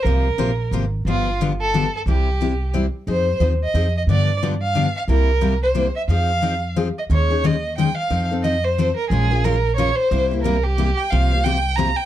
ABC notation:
X:1
M:3/4
L:1/16
Q:"Swing" 1/4=179
K:Fm
V:1 name="Violin"
B8 z4 | F4 z2 =A4 A2 | G8 z4 | c4 z2 e4 e2 |
=d4 z2 f4 f2 | B6 c4 =e2 | f8 z2 e2 | d4 e4 g2 f2- |
f2 z2 e2 c4 B2 | A4 B4 d2 c2- | c2 z2 B2 G4 g2 | f4 g4 b2 g2 |]
V:2 name="Steel-string acoustic guitar"
[C,F,B,FGc]2 z2 [C,F,B,FGc] z3 [C,F,B,FGc] z3 | [=D,F,=B,=DG]2 z2 [D,F,B,DG] z3 [D,F,B,DG] z3 | [C,G,C=EG]2 z2 [C,G,CEG] z3 [C,G,CEG] z3 | [F,CEA]2 z2 [F,CEA] z3 [F,CEA] z3 |
[=D,F,=B,=DG]2 z2 [D,F,B,DG] z3 [D,F,B,DG] z3 | [C,G,B,=EG]2 z2 [C,G,B,EG] z3 [C,G,B,EG] z3 | [F,CEA]2 z2 [F,CEA] z3 [F,CEA] z3 | [E,A,DEA]2 [DEA]2 [E,A,DEA] z3 [E,A,DEA] z3 |
[F,CE=A]2 [CEA]2 [F,CEA] z3 [F,CEA] z3 | [F,A,DFB]2 [DFB]2 [F,A,DFB] z3 [F,A,DFB] z3 | [C,G,B,=EG]2 [B,EG]2 [C,G,B,EG] z3 [C,G,B,EG] z3 | [C,F,B,FGc]2 [B,FGc]2 [C,F,B,FGc] z3 [C,F,B,FGc] z3 |]
V:3 name="Upright bass" clef=bass
C,,4 B,,,4 A,,,4 | G,,,12 | C,,12 | F,,4 E,,4 F,,4 |
G,,12 | C,,12 | F,,12 | E,,12 |
F,,12 | B,,,12 | C,,12 | C,,12 |]